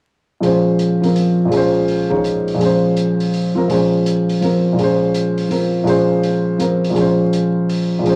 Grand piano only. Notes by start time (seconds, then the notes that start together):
0.40 A#2 F3 G#3 C#4
0.45 C5
1.02 F3 C4 A#4
1.45 A#2 F3
1.51 G#3 C#4
1.57 C5
2.10 G#3 A#3 D#4 C#5
2.54 A#2 F3
2.60 G#3 C#4
2.65 C5
3.55 F3 C4 A#4
3.68 A#2 F3 G#3 C#4
3.73 C5
4.41 F3 C4 A#4
4.73 A#2 F3
4.79 G#3 C#4
4.84 C5
5.49 F3 C4 A#4
5.84 A#2 F3 G#3
5.88 C#4 C5
6.59 F3 C4 A#4
6.90 A#2 F3
6.95 G#3 C#4
7.01 C5
7.99 A#2 F3
8.04 G#3 C#4
8.09 C5